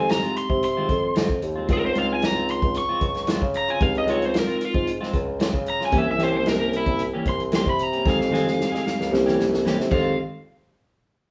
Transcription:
Already playing: bassoon F2, tine electric piano G#3 C4 D#4 G4
0.09 overdriven electric guitar A#5, muted clean electric guitar stroke, snare, closed hi-hat
0.23 clean electric guitar G#3 C4 F4, closed hi-hat
0.36 overdriven electric guitar C6, muted clean electric guitar stroke, closed hi-hat
0.49 bassoon C3, muted clean electric guitar stroke, kick
0.62 overdriven electric guitar C6, muted clean electric guitar stroke, closed hi-hat
0.77 clean electric guitar D#3 G#3 C4 F4
0.89 bassoon F2, kick, closed hi-hat
1.04 muted clean electric guitar stroke
1.15 bassoon F2, clean electric guitar D#3 G#3 C4 F4, snare, closed hi-hat
1.29 muted clean electric guitar stroke, kick
1.42 bassoon D#2, muted clean electric guitar stroke, closed hi-hat
1.55 clean electric guitar G#3 C4 F4
1.67 bassoon C#2, tine electric piano G#3 C4 D#4 F4, clean electric guitar G#3 C4 F4, kick, closed hi-hat
1.73 overdriven electric guitar A#4
1.83 overdriven electric guitar C5, muted clean electric guitar stroke
1.95 tine electric piano G#3 C4 D#4 F4, clean electric guitar G#3 C4 F4, overdriven electric guitar F5, closed hi-hat
2.14 overdriven electric guitar G#5
2.22 overdriven electric guitar A#5, muted clean electric guitar stroke, snare, closed hi-hat
2.35 clean electric guitar C4 F4
2.48 overdriven electric guitar C6, muted clean electric guitar stroke, closed hi-hat
2.62 bassoon C#2, muted clean electric guitar stroke, kick, closed hi-hat
2.74 overdriven electric guitar C#6, muted clean electric guitar stroke, closed hi-hat
2.89 clean electric guitar G#3 C4 F4
3.01 bassoon C#2, kick, closed hi-hat
3.14 muted clean electric guitar stroke, snare, closed hi-hat
3.27 clean electric guitar G#3 C4 F4, snare, closed hi-hat
3.42 bassoon C#3, muted clean electric guitar stroke, kick
3.54 overdriven electric guitar A#5, muted clean electric guitar stroke, closed hi-hat
3.68 clean electric guitar C4 F4, overdriven electric guitar G#5, closed hi-hat
3.80 bassoon C#2, tine electric piano G#3 C4 D#4 G4, overdriven electric guitar F5, kick, closed hi-hat
3.95 overdriven electric guitar D#5, muted clean electric guitar stroke, closed hi-hat
4.07 clean electric guitar G#3 C4 F4, tine electric piano G#3 C4 D#4 F4, overdriven electric guitar C#5, closed hi-hat
4.22 overdriven electric guitar C5, closed hi-hat
4.34 muted clean electric guitar stroke, snare, closed hi-hat
4.39 overdriven electric guitar A#4
4.47 clean electric guitar C4 F4, closed hi-hat
4.60 muted clean electric guitar stroke, closed hi-hat
4.65 overdriven electric guitar F4
4.74 bassoon G#2, muted clean electric guitar stroke, kick
4.86 muted clean electric guitar stroke, closed hi-hat
5.01 clean electric guitar G#3 C4 F4, snare
5.14 bassoon C#2, kick, closed hi-hat
5.27 muted clean electric guitar stroke
5.39 clean electric guitar G#3 C4 F4, snare, closed hi-hat
5.53 bassoon C#3, muted clean electric guitar stroke, kick
5.66 overdriven electric guitar A#5, muted clean electric guitar stroke, closed hi-hat
5.80 clean electric guitar C4 F4, snare
5.86 overdriven electric guitar G#5
5.91 bassoon C2, clean electric guitar E3 A#3 C#4 G4, tine electric piano A#3 C#4 E4 G4, kick, closed hi-hat
5.98 overdriven electric guitar E5
6.06 muted clean electric guitar stroke
6.11 overdriven electric guitar E5
6.18 clean electric guitar E3 A#3 C#4 G4, tine electric piano A#3 C#4 E4 A#4, snare, closed hi-hat
6.23 overdriven electric guitar C5
6.37 overdriven electric guitar C5
6.46 overdriven electric guitar A#4, muted clean electric guitar stroke, snare, closed hi-hat
6.59 clean electric guitar A#3 C#4 G4
6.73 overdriven electric guitar E4, muted clean electric guitar stroke, closed hi-hat
6.86 bassoon C2, muted clean electric guitar stroke, kick, closed hi-hat
6.99 muted clean electric guitar stroke, closed hi-hat
7.14 clean electric guitar E3 A#3 C#4 G4
7.26 bassoon C2, overdriven electric guitar C6, kick, closed hi-hat
7.40 muted clean electric guitar stroke, closed hi-hat
7.52 clean electric guitar E3 A#3 C#4 G4, snare, closed hi-hat
7.56 overdriven electric guitar C6
7.66 bassoon C3, overdriven electric guitar B5, muted clean electric guitar stroke, kick
7.79 overdriven electric guitar A#5, muted clean electric guitar stroke, closed hi-hat
7.92 clean electric guitar A#3 C#4 G4, closed hi-hat
8.05 bassoon F2, clean electric guitar D#3 G#3 C4 G#4, tine electric piano G#3 C4 D#4 G4, kick, snare
8.09 overdriven electric guitar F5
8.20 muted clean electric guitar stroke, snare
8.31 clean electric guitar D#3 G#3 C4 G#4, tine electric piano G#3 C4 D#4 G4, snare
8.47 snare
8.58 muted clean electric guitar stroke, snare
8.72 clean electric guitar G#3 C4 G#4, snare
8.85 muted clean electric guitar stroke, snare
8.99 bassoon C#2, muted clean electric guitar stroke, snare
9.11 bassoon C2, tine electric piano A#3 C#4 E4 G4, muted clean electric guitar stroke, snare
9.26 clean electric guitar E3 A#3 C#4 G4, snare
9.39 bassoon C2, snare
9.53 muted clean electric guitar stroke, snare
9.65 clean electric guitar E3 A#3 C#4 G4, snare
9.79 bassoon C3, muted clean electric guitar stroke, snare
9.90 bassoon F2, clean electric guitar D#3 G#3 C4 F4, tine electric piano G#3 C4 D#4 G4, overdriven electric guitar F5, kick, crash

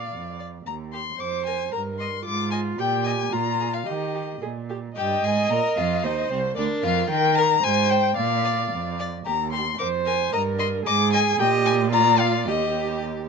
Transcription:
Already playing: viola D5, violin F5
0.12 cello F2
0.39 violin D5
0.66 cello D#2, violin A#5
0.93 violin G4 C6
1.20 cello F2, viola C5, violin D6
1.46 violin A#4 G#5
1.72 cello G2, viola A#4, violin A#5
2.00 violin D#5 C6
2.25 cello G#2, viola F4, violin D6
2.51 violin D#5 G#5
2.78 cello A#2, viola G4, violin G5
3.05 violin D#5 G#5
3.32 cello A#2, viola F4, violin A#5
3.60 violin G#4
3.74 violin F5
3.87 cello D#3, viola G4, violin D#5
4.15 violin G4
4.42 cello A#2, viola G#4
4.69 viola G4, violin G4
4.96 cello G2, violin G4 G5, viola D#5
5.23 cello G#2, violin G#4 G#5
5.50 cello A#2, violin A#4 A#5
5.77 cello F2, violin F4 F5
6.04 cello D#2, violin D#4 D#5, viola C5
6.30 cello C2, violin C4 C5
6.56 cello D2, violin D4 D5, viola A#4
6.83 cello F2, violin F4 F5
7.10 cello D#3, viola A#4, violin G5
7.35 violin A#4 A#5
7.63 cello G#2, viola C5, violin G#5
7.90 violin C5 G5
8.17 cello A#2, viola D5, violin F5
8.44 violin D5
8.72 cello F2
8.99 violin D5
9.25 cello D#2, violin G4 A#5
9.52 violin G4 C6
9.79 cello F2, violin A#4 D6, viola C5
10.06 violin A#4 G#5
10.33 cello G2, viola A#4, violin D#5 A#5
10.58 violin D#5 C6
10.86 cello G#2, viola G#4, violin D#5 D6
11.13 violin D#5 G#5
11.39 cello A#2, viola G4, violin D#5 G5
11.66 violin G#5
11.92 viola F4, violin D5 A#5
12.20 violin F5
12.47 cello D#2, viola G4, violin G4 D#5

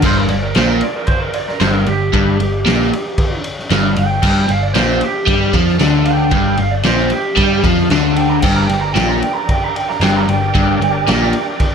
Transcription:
0.02 picked electric bass G1, overdriven electric guitar G2, lead electric guitar C5, kick, ride, crash
0.19 lead electric guitar A#4
0.28 picked electric bass G1, overdriven electric guitar G2, lead electric guitar D5, ride
0.43 lead electric guitar A#4
0.55 picked electric bass A#1, overdriven electric guitar A#2, lead electric guitar C5, snare, ride
0.69 lead electric guitar A#4, snare
0.81 lead electric guitar D5, ride
0.96 lead electric guitar A#4
1.07 lead electric guitar C5, kick, ride
1.21 lead electric guitar A#4
1.33 lead electric guitar D5, ride
1.48 lead electric guitar A#4, snare
1.60 picked electric bass G1, overdriven electric guitar G2, lead electric guitar C5, snare, ride
1.73 lead electric guitar A#4
1.86 picked electric bass G1, overdriven electric guitar G2, lead electric guitar G4, ride
2.13 picked electric bass G1, overdriven electric guitar G2, kick, ride
2.40 picked electric bass G1, overdriven electric guitar G2, ride
2.66 picked electric bass A#1, overdriven electric guitar A#2, snare, ride
2.82 snare
2.93 ride
3.18 kick, ride
3.44 ride
3.59 snare
3.70 picked electric bass G1, overdriven electric guitar G2, snare, ride
3.96 picked electric bass G1, overdriven electric guitar G2, lead electric guitar G5, ride
4.23 picked electric bass G1, overdriven electric guitar G2, kick, crash
4.48 picked electric bass G1, overdriven electric guitar G2, lead electric guitar F5, ride
4.63 lead electric guitar D5
4.73 picked electric bass A#1, overdriven electric guitar A#2, lead electric guitar C5, snare, ride
4.90 snare
5.01 lead electric guitar G4, ride
5.27 picked electric bass G2, overdriven electric guitar G3, kick, ride
5.53 picked electric bass F2, overdriven electric guitar F3, kick, ride
5.68 snare
5.79 picked electric bass D2, overdriven electric guitar D3, snare, ride
6.05 lead electric guitar G5, ride
6.31 picked electric bass G1, overdriven electric guitar G2, kick, ride
6.57 picked electric bass G1, overdriven electric guitar G2, lead electric guitar F5, ride
6.71 lead electric guitar D5
6.83 picked electric bass A#1, overdriven electric guitar A#2, lead electric guitar C5, snare, ride
6.99 snare
7.10 lead electric guitar G4, ride
7.36 picked electric bass G2, overdriven electric guitar G3, kick, ride
7.63 picked electric bass F2, overdriven electric guitar F3, kick, ride
7.78 snare
7.90 picked electric bass D2, overdriven electric guitar D3, snare, ride
8.16 lead electric guitar G5, ride
8.29 lead electric guitar A#5
8.41 picked electric bass G1, overdriven electric guitar G2, tonewheel organ D4 G4 A#4 D5, lead electric guitar G5, kick, crash
8.56 lead electric guitar A#5
8.66 picked electric bass G1, overdriven electric guitar G2, lead electric guitar G5, ride
8.81 lead electric guitar A#5
8.93 picked electric bass A#1, overdriven electric guitar A#2, lead electric guitar G5, ride
8.97 snare
9.09 lead electric guitar A#5, snare
9.21 lead electric guitar G5, ride
9.33 lead electric guitar A#5
9.49 lead electric guitar G5, kick, ride
9.64 lead electric guitar A#5
9.76 lead electric guitar G5, ride
9.89 lead electric guitar A#5, snare
10.00 picked electric bass G1, overdriven electric guitar G2, snare, ride
10.04 lead electric guitar G5
10.16 lead electric guitar A#5
10.28 picked electric bass G1, overdriven electric guitar G2, lead electric guitar G5, ride
10.55 picked electric bass G1, overdriven electric guitar G2, kick, ride
10.80 picked electric bass G1, overdriven electric guitar G2, ride
11.08 picked electric bass A#1, overdriven electric guitar A#2, snare, ride
11.23 snare
11.33 ride
11.60 kick, ride

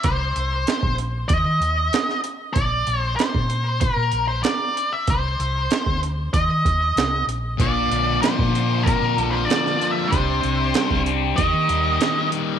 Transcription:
0.03 fingered electric bass C2, lead electric guitar C5, kick, closed hi-hat
0.36 fingered electric bass C2, closed hi-hat
0.67 snare, closed hi-hat
0.83 fingered electric bass A#1, kick
0.98 closed hi-hat
1.28 fingered electric bass D#2, lead electric guitar D#5, kick, closed hi-hat
1.45 fingered electric bass D#3
1.60 fingered electric bass D#2, closed hi-hat
1.93 snare, closed hi-hat
2.10 snare
2.24 closed hi-hat
2.54 fingered electric bass A#1, lead electric guitar D5, kick, closed hi-hat
2.87 fingered electric bass A#1, closed hi-hat
3.00 lead electric guitar C5
3.16 lead electric guitar C5, snare, closed hi-hat
3.35 fingered electric bass A#2, kick
3.50 closed hi-hat
3.80 lead electric guitar A#4, kick, closed hi-hat
3.96 fingered electric bass A#2
4.12 fingered electric bass A#1, closed hi-hat
4.28 lead electric guitar C5
4.43 lead electric guitar D5, snare, closed hi-hat
4.77 closed hi-hat
4.93 lead electric guitar E5
5.07 fingered electric bass C2, lead electric guitar C5, kick, closed hi-hat
5.39 fingered electric bass C2, closed hi-hat
5.71 snare, closed hi-hat
5.86 fingered electric bass D2, kick
6.03 closed hi-hat
6.34 fingered electric bass D#2, lead electric guitar D#5, kick, closed hi-hat
6.48 fingered electric bass D#3
6.65 fingered electric bass D#2, kick, closed hi-hat
6.96 fingered electric bass C2, snare, closed hi-hat
7.27 fingered electric bass A#1, closed hi-hat
7.58 fingered electric bass A#1, distorted electric guitar A#2, transistor combo organ A#3 D4 F4, lead electric guitar D5, kick, closed hi-hat
7.90 fingered electric bass A#1, distorted electric guitar D3, closed hi-hat
8.21 distorted electric guitar F3, lead electric guitar C5, snare, closed hi-hat
8.39 fingered electric bass A#2, kick
8.52 distorted electric guitar A#3, closed hi-hat
8.83 distorted electric guitar D3, lead electric guitar A#4, kick
8.87 closed hi-hat
9.02 fingered electric bass A#2
9.15 fingered electric bass A#1, distorted electric guitar F3, closed hi-hat
9.20 lead electric guitar A4
9.30 lead electric guitar C5
9.45 distorted electric guitar D3, lead electric guitar D5
9.50 snare, closed hi-hat
9.67 snare
9.80 distorted electric guitar F3, closed hi-hat
9.91 lead electric guitar E5
10.08 distorted electric guitar C3, transistor combo organ C4, lead electric guitar C5
10.13 fingered electric bass C2, transistor combo organ G4, kick, closed hi-hat
10.42 fingered electric bass C2, distorted electric guitar C3, closed hi-hat
10.74 distorted electric guitar G3, snare, closed hi-hat
10.91 fingered electric bass C2, kick
11.06 distorted electric guitar C4, closed hi-hat
11.36 fingered electric bass D#2, distorted electric guitar D#3, transistor combo organ A#3 D#4 G4, lead electric guitar D#5, kick, closed hi-hat
11.53 fingered electric bass D#3
11.68 fingered electric bass D#2, distorted electric guitar G3, closed hi-hat
12.00 distorted electric guitar D#3, snare, closed hi-hat
12.32 distorted electric guitar G3, closed hi-hat

